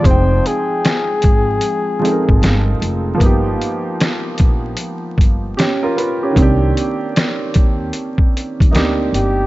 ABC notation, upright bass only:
X:1
M:4/4
L:1/16
Q:"Swing 16ths" 1/4=76
K:Fdor
V:1 name="Upright bass" clef=bass
F,,,2 z4 A,,,2 z3 A,,, G,,,2 F,,,2 | G,,,2 z4 ^A,,,2 z2 G,,,2 z4 | C,,2 z4 E,,2 z3 E,, D,,2 G,,,2 |]